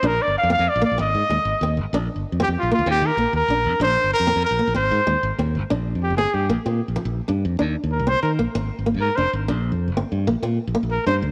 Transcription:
<<
  \new Staff \with { instrumentName = "Trumpet" } { \time 12/8 \key bes \mixolydian \tempo 4. = 127 bes'8 d''8 f''8 f''8 d''8 d''8 ees''2~ ees''8 r8 | r4. g'8 f'8 f'8 g'8 bes'4 bes'4. | c''4 bes'4 bes'4 c''2 r4 | r4 g'8 aes'8 g'8 r2. r8 |
r4 bes'8 c''8 bes'8 r2 bes'8 c''8 r8 | r1 r8 bes'8 c''8 r8 | }
  \new Staff \with { instrumentName = "Nylon-string guitar" } { \time 12/8 \key bes \mixolydian d'4 r8 c'4 bes8 c'4 aes4 c'4 | d'4 r8 c'4 bes8 c'4 bes4 d'4 | d'4 r8 c'4 bes8 c'4 aes4 c'4 | d'4 r8 c'4 bes8 c'4 f4 d'4 |
d'4 r8 c'4 bes8 r4 bes4 d'4 | d'4 r8 c'4 bes8 c'4 bes4 d'4 | }
  \new Staff \with { instrumentName = "Fingered electric bass" } { \clef bass \time 12/8 \key bes \mixolydian bes,,8 r16 g,,16 r16 f,8 f,16 r16 bes,,16 r16 bes,,16 aes,,8 aes,16 r16 ees,16 r16 aes,,16 r16 ees,8 aes,,16 r16 | bes,,8 r16 g,,16 r16 f,8 f,16 r16 bes,,16 r16 d,16 ees,8 ees16 r16 bes,,16 r16 ees,16 r16 bes,,8 f,16 r16 | bes,,8 r16 g,,16 r16 f,8 f,16 r16 bes,,16 r16 bes,,16 aes,,8 aes,16 r16 ees,16 r16 aes,,16 r16 ees,8 aes,,16 r16 | bes,,8. f,8 g,,8 r16 g,8 bes,,16 r16 bes,8 r16 bes,,16 r16 bes,,8 r16 g,8 f,8 |
ees,8 r16 ees,8 c,8 r16 ees8 bes,,16 r16 aes,,8 r16 aes,,8 aes,8 r16 f,,16 r16 aes,,8 | bes,,8. f,8 g,,8 r16 g,8 bes,,16 r16 bes,8 r16 bes,,16 r16 bes,,8 r16 g,8 d,8 | }
>>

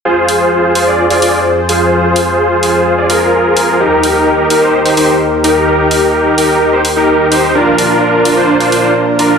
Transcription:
<<
  \new Staff \with { instrumentName = "Supersaw synth" } { \time 4/4 \key f \dorian \tempo 4 = 128 <f' aes' c''>4. <f' aes' c''>16 <f' aes' d''>8 <f' aes' d''>16 <f' aes' d''>8 r8 <f' aes' c''>8 | <f' aes' c''>4. <f' aes' c''>16 <f' aes' c''>8 <f' aes' d''>16 <f' aes' bes'>4. | <ees' g' bes'>4. <ees' g' bes'>16 <ees' g' c''>8 <ees' g' c''>16 <ees' g' c''>8 r8 <ees' g' bes'>8 | <ees' g' bes'>4. <ees' g' bes'>16 <ees' g' bes'>8 <ees' g' c''>16 r16 <ees' g' bes'>8. <ees' g' c''>8 |
<d' f' bes'>4. <d' f' bes'>16 <d' f' c''>8 <d' f' c''>16 <d' f' c''>8 r8 <d' f' bes'>8 | }
  \new Staff \with { instrumentName = "Analog synth pad" } { \time 4/4 \key f \dorian <f, f aes' c''>1~ | <f, f aes' c''>1 | <ees, ees g' bes'>1~ | <ees, ees g' bes'>1 |
<bes, f d' bes'>1 | }
  \new DrumStaff \with { instrumentName = "Drums" } \drummode { \time 4/4 r8 hho8 r8 hho8 r16 hho16 hho8 r8 hho8 | r8 hho8 r8 hho8 r8 hho8 r8 hho8 | r8 hho8 r8 hho8 r16 hho16 hho8 r8 hho8 | r8 hho8 r8 hho8 r8 hho8 r8 hho8 |
r8 hho8 r8 hho8 r16 hho16 hho8 r8 hho8 | }
>>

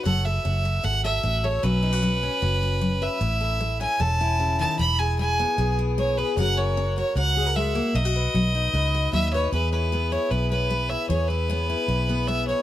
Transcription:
<<
  \new Staff \with { instrumentName = "Fiddle" } { \time 4/4 \key e \major \tempo 4 = 152 fis''8 e''4. fis''8 e''4 cis''8 | b'2.~ b'8 e''8~ | e''4. gis''8 a''4. a''8 | b''8 gis''8 gis''4. r8 cis''8 b'8 |
fis''8 cis''4 cis''8 fis''4 e''4 | dis''2. e''8 cis''8 | b'8 b'4 cis''8 b'8 b'4 e''8 | cis''8 b'2~ b'8 e''8 cis''8 | }
  \new Staff \with { instrumentName = "Steel-string acoustic guitar" } { \time 4/4 \key e \major << { a'8 a'4 fis'8 a'8 a'4 a'8 | <fis cis' fis'>8 dis'16 fis'8. cis'8 fis'8 fis'4 b'8 | e'8 a'4 cis'8 a'8 e'4. | e'8 gis'4 b8 gis'8 e'4 gis'8 |
<cis' fis' ais'>8 ais'4 fis'8 ais'8 gis'16 ais'4~ ais'16 | dis'16 fis'16 b'4 dis'8 b'8 fis'4 b'8 | gis'8 e'8 b8 e'4 b4 e'8 | gis'8 e'8 b8 e'4 b4 e'8 | } \\ { fis4 cis'4 cis4 cis'4 | b,4 fis4 b,4 fis4 | a,4 a4 e4 cis8 dis8 | e4 gis4 b,4 gis4 |
fis4 cis'4 cis4 gis8 ais8 | b,4 fis4 b,4 fis4 | e4 gis4 b,4 gis4 | e4 gis4 b,4 gis4 | } >> }
  \new Staff \with { instrumentName = "Fingered electric bass" } { \clef bass \time 4/4 \key e \major fis,,4 fis,,4 gis,,4 a,,4 | b,,2 fis,,2 | a,,2 e,,2 | e,,2 b,,2 |
fis,,2 cis,2 | b,,4 b,,4 cis,4 dis,4 | e,2 b,,2 | e,2 b,,2 | }
>>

